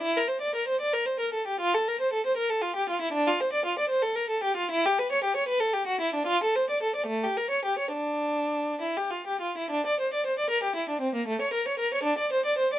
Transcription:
\new Staff \with { instrumentName = "Violin" } { \time 6/8 \key f \major \tempo 4. = 77 e'16 bes'16 c''16 d''16 bes'16 c''16 d''16 bes'16 c''16 bes'16 a'16 g'16 | f'16 a'16 bes'16 c''16 a'16 c''16 bes'16 a'16 f'16 g'16 f'16 e'16 | \key d \minor d'16 f'16 c''16 d''16 f'16 d''16 c''16 a'16 bes'16 a'16 g'16 f'16 | e'16 g'16 b'16 cis''16 g'16 cis''16 b'16 a'16 g'16 fis'16 e'16 d'16 |
f'16 a'16 c''16 d''16 a'16 d''16 a16 g'16 bes'16 cis''16 g'16 cis''16 | d'4. e'16 g'16 f'16 g'16 f'16 e'16 | d'16 d''16 c''16 d''16 c''16 d''16 bes'16 g'16 e'16 d'16 c'16 bes16 | a16 cis''16 bes'16 cis''16 bes'16 cis''16 d'16 d''16 c''16 d''16 c''16 d''16 | }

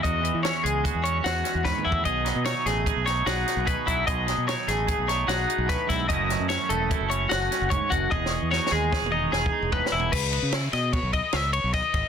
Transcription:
<<
  \new Staff \with { instrumentName = "Clean electric guitar" } { \time 5/4 \key e \major \tempo 4 = 149 dis''4 cis''8 gis'4 cis''8 fis'4 b'8 e'8 | dis''4 cis''8 gis'4 cis''8 fis'4 b'8 e'8 | dis''4 cis''8 gis'4 cis''8 fis'4 b'8 e'8 | dis''4 cis''8 a'4 cis''8 fis'4 cis''8 fis'8 |
dis''4 cis''8 gis'4 dis''8 gis'4 b'8 e'8 | b'4 r8 dis''8 cis''8 dis''8 e''8 cis''8 dis''4 | }
  \new Staff \with { instrumentName = "Clean electric guitar" } { \time 5/4 \key e \major << { fis'4 cis'8 gis8 fis'8 cis'8 fis'8 cis'4. | gis'4 dis'8 a8 gis'8 dis'8 gis'8 dis'8 gis'4 | gis'4 dis'8 a8 gis'8 dis'8 gis'8 dis'4. | <fis a cis' e'>4 cis'8 a8 e'8 cis'8 fis'8 cis'4. |
gis'4 dis'8 gis8 gis'8 dis'8 gis'8 dis'4. | r1 r4 | } \\ { e,8 e2.~ e8 gis,8 a,8 | b,8 fis2.~ fis8 b,8 fis8 | b,8 fis2.~ fis8 a,8 gis,8 | fis,8 fis2.~ fis8 gis,8 fis,8 |
e,1 a,8 b,8 | r1 r4 | } >> }
  \new Staff \with { instrumentName = "Fingered electric bass" } { \clef bass \time 5/4 \key e \major e,8. e8 r16 cis,8. e,8. e,8 r16 e,8 r16 e,8 | b,,8. b,8 r16 a,,8. b,,8. b,,8 r16 b,,8 r16 b,,8 | b,,8. b,8 r16 a,,8. b,,8. b,,8 r16 b,,8 r16 b,,8 | fis,,8. fis,8 r16 e,,8. fis,,8. fis,,8 r16 fis,,8 r16 fis,,8 |
e,,8. e,8 r16 dis,8. e,,8. e,,8 r16 e,,8 r16 e,,8 | cis,8. cis8. b,8. b,,8 r16 cis,8. b,,8 r16 gis,,16 r16 | }
  \new DrumStaff \with { instrumentName = "Drums" } \drummode { \time 5/4 <hh bd>8 hh8 <hh sn>8 hh8 <hh bd>8 hh8 <hh sn>8 <hh sn>8 \tuplet 3/2 { <bd sn>8 toml8 bd8 } | <hh bd>8 <hh sn>8 <hh sn>8 <hh sn>8 <hh bd>8 <hh sn>8 <hh sn>8 <hh sn>8 <hh bd>8 <hh bd>8 | <hh bd>8 <hh sn>8 <hh sn>8 <hh sn>8 <hh bd>8 <hh sn>8 <hh sn>8 hh8 <hh bd sn>8 <hh bd sn>8 | <hh bd>8 <hh sn>8 <hh sn>8 hh8 <hh bd>8 hh8 <hh sn>8 <hh sn>8 <hh bd>8 <hh bd>8 |
\tuplet 3/2 { <bd tommh>8 sn8 r8 sn8 sn8 r8 <bd sn>8 toml8 r8 sn8 bd8 r8 <bd tomfh>8 sn8 tomfh8 } | <cymc bd>8 cymr8 <cymr sn>8 <cymr sn>8 <bd cymr>8 <bd cymr>8 <cymr sn>8 cymr8 <bd cymr sn>8 <bd cymr>8 | }
>>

